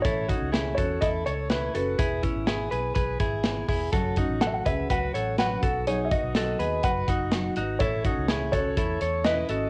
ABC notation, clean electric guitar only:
X:1
M:4/4
L:1/8
Q:1/4=124
K:Alyd
V:1 name="Clean electric guitar"
[EA] [DF] [EG] [FA] [EA] [Ac] [EB] [FA] | [EG] [CE] [EG] [GB] [GB] [EG]2 [EG] | [FA] [DF] [FA] [GB] [FB] [Ac] [FB] [FA] | [DG] [DF] [FA] [GB] [FB] [DF]2 [DF] |
[EA] [DF] [EG] [FA] [EA] [Ac] [EB] [FA] |]